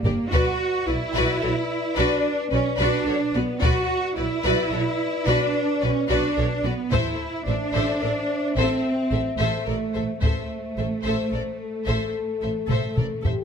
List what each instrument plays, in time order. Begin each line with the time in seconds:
Already playing: french horn section A#4 D5
0.04 double bass section G1, cello section A#3, viola section G4, violin section A#4 D5, taiko low
0.31 double bass section B1, cello section F#4, viola section F#4, french horn section B4 D5, violin section B4 D5, taiko
0.87 double bass section B1, cello section E4, viola section F#4, violin section B4 D5
1.15 double bass section B1, viola section F#4, violin section B4 D5
1.42 double bass section B1, viola section F#4, violin section A4 C#5
1.96 double bass section B1, cello section D4, viola section F#4, violin section B4 D5
2.51 double bass section B1, cello section C#4, viola section F#4, violin section B4 D5
2.78 double bass section B1, cello section D4, viola section F#4, violin section B4 D5
3.06 double bass section B1, viola section F#4, violin section A4 C#5
3.34 double bass section B1, cello section B3, viola section F#4, violin section B4 D5
3.61 double bass section B1, cello section F#4, viola section F#4, violin section B4 D5, french horn section B4 D5, taiko
4.16 double bass section B1, cello section E4, viola section F#4, violin section B4 D5
4.44 double bass section B1, viola section F#4, violin section B4 D5
4.72 double bass section B1, viola section F#4, violin section A4 C#5
5.27 double bass section B1, cello section D4, viola section F#4, violin section B4 D5
5.81 double bass section B1, cello section C#4, viola section F#4, violin section B4 D5
6.09 double bass section B1, cello section D4, viola section F#4, violin section B4 D5
6.37 double bass section B1, viola section F#4, violin section A4 C#5
6.63 double bass section B1, cello section B3, viola section F#4, violin section B4 D5
6.92 double bass section A1, cello section E4, viola section A4, violin section C5 E5, french horn section C5 E5, taiko
7.47 double bass section A1, cello section D4, viola section A4, violin section C5 E5
7.74 double bass section A1, viola section A4, violin section C5 E5
8.01 double bass section A1, viola section A4, violin section A#4 D5
8.57 double bass section A1, cello section C4, viola section A4, violin section C5 E5
9.11 double bass section A1, viola section A4, violin section C5 E5
9.39 double bass section A1, cello section A3, viola section A4, violin section C5 E5
9.66 double bass section A1, viola section A4, violin section A#4 D5
9.95 double bass section A1, viola section A4, violin section C5 E5
10.22 double bass section A1, cello section A3, viola section A4, french horn section C5 E5, violin section C5 E5, taiko
10.78 double bass section A1, viola section A4, violin section C5 E5
11.03 double bass section A1, viola section A4, violin section C5 E5, french horn section C5
11.32 double bass section A1, viola section A4, violin section A#4 D5
11.59 french horn section A4
11.86 double bass section A1, viola section A4, violin section C5 E5
12.41 double bass section A1, viola section A4, violin section C5 E5
12.67 double bass section A1, viola section A4, french horn section A4, violin section C5 E5, taiko low-mid
12.95 double bass section A1, viola section A4, violin section A#4 D5, taiko low-mid
13.22 double bass section A1, french horn section G4, viola section A4, violin section C5 E5, taiko low